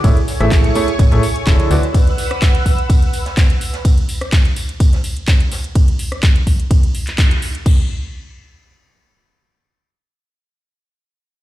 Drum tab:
CC |----------------|----------------|----------------|----------------|
RD |x---x---x---x---|x---x---x---x---|x---x---x---x---|x---x---x---x---|
HH |xxoxxxoxxxoxxxox|xxoxxxoxxxoxxxox|xxoxxxoxxxoxxxox|xxoxxxoxxxoxxxox|
TB |x-x-x-x-x-x-x-x-|x-x-x-x-x-x-x-x-|x-x-x-x-x-x-x-x-|----------------|
CP |----x-------x---|----x-------x---|----x-------x---|----x------xx---|
SD |---ro----o--o-o-|---ro------oo--o|---ro----o--o-o-|---r------------|
BD |o---o---o---o---|o---o-o-o---o---|o---o---o---o---|o---o-o-o---o---|

CC |x---------------|----------------|
RD |----------------|----------------|
HH |----------------|----------------|
TB |----------------|----------------|
CP |----------------|----------------|
SD |----------------|----------------|
BD |o---------------|----------------|